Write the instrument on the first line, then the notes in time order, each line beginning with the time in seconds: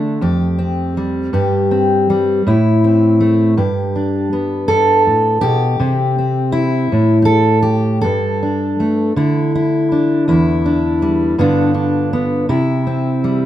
steel-string acoustic guitar
Already playing: D3 A3 D4
0.21 F2 G4
0.59 C4
0.97 G3
1.33 G2 G4
1.71 C4
2.10 G3
2.47 A2 E4
2.84 C4
3.20 A3
3.57 G2 G4
3.96 D4
4.33 B3
4.68 G2 A4
5.07 A2
5.41 B2 G4
5.80 C3 C4
6.18 C4
6.52 E4
6.92 A2
7.22 G4 A4
7.62 G4
8.01 G2 A4
8.43 D4
8.80 A3
9.16 D3 E4
9.55 E4
9.92 D4
10.28 E2 E4
10.66 D4
11.02 G3
11.38 G2 D3 B3 D4 F4
11.74 D4
12.13 B3
12.49 C3 E4
12.87 C4
13.24 G3